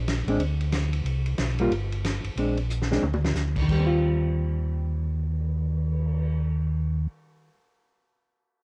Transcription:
0.00 0.23 A#1 medium
0.08 snare medium
0.08 hi-hat pedal medium
0.08 ride medium
0.26 0.39 A1 medium
0.26 0.39 G#3 medium
0.26 0.39 C4 medium
0.26 0.39 D4 medium
0.26 ride soft
0.39 1.02 D2 medium
0.39 ride medium
0.60 ride soft
0.72 snare medium
0.72 hi-hat pedal soft
0.72 ride medium
0.93 ride soft
1.04 1.35 C2 medium
1.04 ride medium
1.26 ride soft
1.38 1.69 B1 medium
1.38 snare medium
1.38 hi-hat pedal soft
1.38 ride medium
1.59 1.71 G3 medium
1.59 1.71 A#3 medium
1.59 1.71 F4 medium
1.59 ride soft
1.71 2.21 G1 medium
1.71 ride medium
1.92 ride soft
2.05 snare medium
2.05 hi-hat pedal medium
2.05 ride medium
2.24 2.30 G1 soft
2.24 ride soft
2.36 2.99 A#1 medium
2.36 2.56 G#3 soft
2.36 2.56 C4 soft
2.36 2.56 D4 soft
2.36 ride soft
2.57 ride soft
2.70 hi-hat pedal medium
2.82 snare soft
2.91 3.02 G#3 medium
2.91 3.02 C4 medium
2.91 3.02 D4 medium
2.91 snare medium
3.03 3.33 D2 medium
3.03 mid tom medium
3.14 mid tom medium
3.25 snare medium
3.35 3.66 D2 medium
3.35 snare medium
3.35 hi-hat pedal medium
3.56 kick medium
3.56 crash medium
3.62 7.49 D#3 medium
3.68 7.07 D#2 medium
3.68 7.58 G3 medium
3.68 kick medium
3.68 crash medium
3.79 7.66 C4 medium
3.86 7.74 F4 medium
3.86 cymbal swell soft

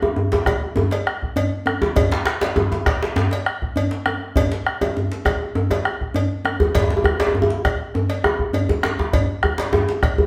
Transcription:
0.02 djembe tone soft
0.02 djembe tone medium
0.16 bombo rim soft
0.16 djembe slap soft
0.16 djembe bass medium
0.32 djembe slap medium
0.32 djembe tone medium
0.46 bombo rim medium
0.46 bombo low medium
0.46 cowbell soft
0.46 djembe tone medium
0.76 djembe tone medium
0.76 djembe bass medium
0.91 cowbell soft
0.91 djembe slap medium
1.07 bombo rim medium
1.22 bombo low medium
1.22 djembe slap soft
1.36 cowbell medium
1.36 djembe bass medium
1.66 bombo rim medium
1.66 djembe tone medium
1.82 djembe tone medium
1.96 bombo low medium
1.96 cowbell medium
1.96 djembe tone medium
1.96 djembe bass medium
2.11 djembe slap medium
2.26 bombo rim medium
2.26 djembe slap medium
2.41 cowbell soft
2.41 djembe slap medium
2.41 djembe tone soft
2.56 bombo rim soft
2.56 djembe slap soft
2.56 djembe tone loud
2.56 djembe bass medium
2.72 djembe slap soft
2.72 djembe tone medium
2.86 bombo rim medium
2.86 bombo low medium
2.86 cowbell soft
2.86 djembe slap medium
3.03 djembe slap medium
3.16 djembe slap medium
3.16 djembe tone medium
3.16 djembe bass medium
3.31 cowbell soft
3.31 djembe slap soft
3.46 bombo rim medium
3.62 bombo low medium
3.62 djembe slap soft
3.76 cowbell soft
3.76 djembe bass medium
3.91 djembe slap medium
4.06 bombo rim loud
4.06 djembe tone medium
4.36 bombo low medium
4.36 cowbell medium
4.36 djembe tone medium
4.36 djembe bass medium
4.52 djembe slap medium
4.67 bombo rim loud
4.81 cowbell soft
4.81 djembe tone medium
4.81 djembe tone soft
4.96 bombo rim soft
4.96 djembe slap soft
4.96 djembe bass medium
5.12 djembe slap soft
5.25 bombo rim medium
5.25 bombo low medium
5.25 cowbell soft
5.25 djembe tone medium
5.55 djembe tone medium
5.55 djembe bass medium
5.70 cowbell soft
5.70 djembe slap soft
5.70 djembe tone medium
5.85 bombo rim loud
6.01 bombo low medium
6.01 djembe slap soft
6.14 cowbell soft
6.14 djembe bass medium
6.45 bombo rim loud
6.45 djembe tone medium
6.60 djembe bass medium
6.75 bombo low medium
6.75 cowbell medium
6.75 djembe slap medium
6.75 djembe slap soft
6.75 djembe bass medium
6.82 djembe tone medium
6.90 bombo rim soft
6.90 djembe slap medium
6.97 djembe tone medium
7.04 bombo rim medium
7.04 djembe bass medium
7.20 bombo rim soft
7.20 cowbell soft
7.20 djembe slap medium
7.20 djembe slap soft
7.20 djembe tone soft
7.27 djembe tone medium
7.35 bombo rim soft
7.35 djembe slap soft
7.35 djembe bass medium
7.42 djembe tone medium
7.50 djembe slap soft
7.65 bombo rim medium
7.65 bombo low medium
7.65 cowbell soft
7.65 djembe slap soft
7.80 djembe slap soft
7.94 bombo rim soft
7.94 djembe tone medium
7.94 djembe bass medium
8.10 cowbell soft
8.10 djembe slap soft
8.24 bombo rim medium
8.24 djembe tone medium
8.39 bombo rim soft
8.39 bombo low medium
8.53 cowbell soft
8.53 djembe bass medium
8.69 bombo rim soft
8.69 djembe slap soft
8.69 djembe bass medium
8.83 bombo rim medium
8.83 djembe slap medium
8.83 djembe tone medium
8.99 bombo rim soft
8.99 djembe tone medium
9.13 bombo low loud
9.13 cowbell medium
9.13 djembe bass medium
9.43 bombo rim loud
9.43 djembe bass medium
9.58 cowbell soft
9.58 djembe slap medium
9.58 djembe tone soft
9.73 bombo rim soft
9.73 djembe slap soft
9.73 djembe tone loud
9.73 djembe bass medium
9.89 djembe slap soft
10.03 bombo rim medium
10.03 bombo low loud
10.03 cowbell soft
10.18 djembe bass medium

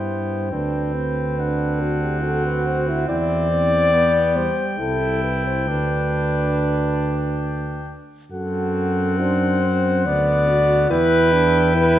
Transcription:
0.00 0.54 G2 medium
0.00 0.48 B3 soft
0.00 0.51 E4 medium
0.00 0.54 C5 medium
0.00 1.41 G5 soft
0.52 3.08 D2 medium
0.52 3.96 C4 medium
0.52 0.94 D4 medium
0.52 1.82 B4 medium
0.94 1.37 C4 medium
1.38 2.25 D4 medium
1.38 3.09 F#5 medium
1.81 2.02 F#4 medium
2.03 2.22 G4 medium
2.23 3.08 F#4 medium
2.23 2.44 A4 medium
2.46 2.68 B4 medium
2.66 2.90 C5 loud
2.88 3.08 E4 medium
3.08 4.49 E2 medium
3.08 3.50 E4 medium
3.08 4.37 D5 loud
3.08 7.96 G5 medium
3.51 3.95 C4 medium
3.93 4.37 B3 medium
3.93 4.52 B3 medium
4.36 4.80 G3 medium
4.36 4.66 C5 medium
4.79 5.69 C2 medium
4.79 5.39 E4 medium
4.79 5.70 E4 medium
4.79 5.22 A4 medium
5.23 5.45 B4 medium
5.47 5.70 C5 medium
5.67 7.99 D2 medium
5.67 7.84 D4 medium
5.67 8.00 D4 medium
5.67 7.88 B4 medium
8.32 10.08 F#2 medium
8.32 10.08 C4 medium
8.32 9.22 F#4 medium
8.32 9.20 A4 medium
8.32 10.88 F#5 medium
9.19 9.65 D4 medium
9.19 10.08 C5 loud
9.64 10.06 C4 medium
10.06 10.90 D2 medium
10.06 10.90 B3 medium
10.06 10.50 B3 medium
10.06 10.90 D5 loud
10.48 10.92 F#4 medium
10.90 11.99 E2 medium
10.90 11.34 E4 loud
10.90 11.99 E4 medium
10.90 11.75 B4 loud
10.90 11.99 G5 medium
11.33 11.74 D4 medium
11.75 11.99 E4 loud
11.75 11.99 B4 loud

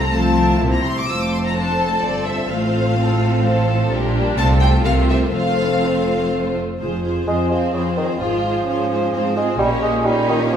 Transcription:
0.00 0.59 C2 soft
0.00 0.11 A3 soft
0.00 0.10 C4 soft
0.00 0.11 C4 soft
0.00 0.10 F4 soft
0.00 0.11 A#5 medium
0.11 0.57 F3 medium
0.11 0.60 A3 soft
0.11 0.59 C4 soft
0.11 0.59 F4 soft
0.11 0.35 A4 soft
0.11 0.60 A5 medium
0.35 0.59 A#4 soft
0.59 0.69 C2 soft
0.59 0.84 A#2 medium
0.59 0.88 G3 soft
0.59 0.88 C4 soft
0.59 0.84 C4 soft
0.59 0.88 E4 soft
0.59 0.85 E4 soft
0.59 0.88 C5 soft
0.72 0.84 A#5 medium
0.85 1.09 C3 soft
0.85 0.97 C6 medium
0.98 1.09 D6 medium
1.07 2.00 F1 soft
1.07 2.00 F2 soft
1.07 2.00 A3 soft
1.07 1.53 C4 soft
1.07 1.53 F4 soft
1.07 2.46 A4 soft
1.07 1.52 C5 soft
1.07 1.21 E6 medium
1.22 1.33 D6 medium
1.33 1.38 C6 medium
1.46 1.57 A#5 medium
1.55 2.49 C4 soft
1.55 1.80 D4 soft
1.55 2.49 F4 soft
1.55 2.02 C5 soft
1.55 2.04 A5 medium
1.81 2.02 C4 soft
2.02 2.50 G1 soft
2.02 2.50 G2 soft
2.02 2.96 C4 soft
2.02 2.49 C5 soft
2.02 2.27 D5 medium
2.26 2.50 E5 soft
2.50 3.88 A1 soft
2.50 3.88 A2 medium
2.50 2.73 A3 soft
2.50 3.88 C4 soft
2.50 2.97 F4 soft
2.50 3.88 F4 soft
2.50 2.96 C5 soft
2.50 3.67 F5 medium
2.74 2.97 A3 soft
2.97 3.91 C4 soft
2.97 3.44 F4 soft
2.97 3.43 A4 soft
3.21 3.43 A3 soft
3.44 3.91 F3 soft
3.44 3.66 A4 medium
3.44 3.90 C5 soft
3.67 3.90 A4 medium
3.90 4.36 A#1 medium
3.90 4.36 A#2 medium
3.90 4.38 G3 medium
3.90 4.34 D4 medium
3.90 4.13 D4 medium
3.90 4.38 G4 soft
3.90 4.34 G4 medium
3.90 4.38 A#4 soft
4.14 4.37 D4 medium
4.37 4.84 C2 medium
4.37 4.84 C3 medium
4.37 5.33 A3 medium
4.37 4.84 C4 medium
4.37 4.85 C4 medium
4.37 4.85 F4 medium
4.37 5.33 F4 soft
4.37 4.85 A4 medium
4.37 4.46 A5 medium
4.62 4.70 G5 medium
4.85 5.33 C2 medium
4.85 5.32 C3 medium
4.85 5.32 C4 medium
4.85 5.33 C4 soft
4.85 5.33 A#4 medium
4.85 5.33 C5 soft
4.85 4.93 F5 medium
5.10 5.18 E5 medium
5.34 6.57 F1 soft
5.34 6.57 F2 soft
5.34 6.57 A3 soft
5.34 6.53 C4 soft
5.34 6.57 C4 soft
5.34 6.57 F4 soft
5.34 6.53 A4 soft
5.34 6.57 C5 soft
5.34 6.29 F5 medium
6.80 7.20 F1 soft
6.80 7.22 F2 medium
6.80 7.02 F4 soft
6.80 7.02 G#4 soft
6.80 7.03 C5 soft
7.03 7.27 F4 soft
7.03 7.26 G#4 soft
7.03 7.26 C5 soft
7.27 7.68 F2 soft
7.27 7.49 G#3 medium
7.27 8.16 C4 soft
7.27 7.50 F4 soft
7.27 7.50 G#4 soft
7.27 7.50 C5 soft
7.51 7.73 F3 medium
7.51 7.73 F4 soft
7.51 7.73 G#4 soft
7.51 7.72 C5 soft
7.73 8.14 F2 soft
7.73 7.84 C#3 medium
7.73 7.97 F4 soft
7.73 7.97 G#4 soft
7.73 7.95 C5 soft
7.96 8.08 D#3 soft
7.96 8.20 F4 soft
7.96 8.20 G#4 soft
7.96 8.19 C5 soft
8.20 8.60 G#1 soft
8.20 8.61 G#2 soft
8.20 9.35 F3 medium
8.20 8.67 F4 medium
8.20 8.44 F4 soft
8.20 8.44 G#4 soft
8.20 8.42 C5 soft
8.43 8.66 F4 soft
8.43 8.66 G#4 soft
8.43 8.66 C5 soft
8.67 9.08 G#2 medium
8.67 9.13 C#4 medium
8.67 8.89 F4 soft
8.67 8.89 G#4 soft
8.67 8.90 C5 soft
8.91 9.13 F4 soft
8.91 9.13 G#4 soft
8.91 9.12 C5 soft
9.13 9.54 G#2 medium
9.13 9.60 C4 soft
9.13 9.36 F4 soft
9.13 9.36 G#4 soft
9.13 9.35 C5 soft
9.36 9.58 G#3 medium
9.36 9.60 F4 soft
9.36 9.60 G#4 soft
9.36 9.59 C5 soft
9.59 10.03 A#1 medium
9.59 10.57 A#2 medium
9.59 9.69 G3 medium
9.59 10.06 A#3 medium
9.59 10.03 C#4 soft
9.59 10.03 G4 soft
9.59 10.03 C#5 soft
9.82 10.06 G#3 medium
10.05 10.28 G3 medium
10.05 10.57 C#4 medium
10.05 10.52 D#4 medium
10.05 10.57 G4 medium
10.05 10.57 C#5 medium
10.29 10.40 D#3 medium
10.53 10.57 F3 medium
10.53 10.57 C#4 soft

